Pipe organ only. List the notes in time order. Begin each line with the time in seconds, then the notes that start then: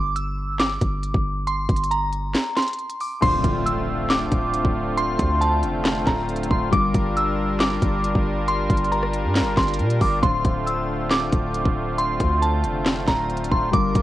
3.22 D3 A3 C4 F4
6.73 G3 D4 A#4
10.23 D3 A3 C4
13.73 G3 D4 F4 A#4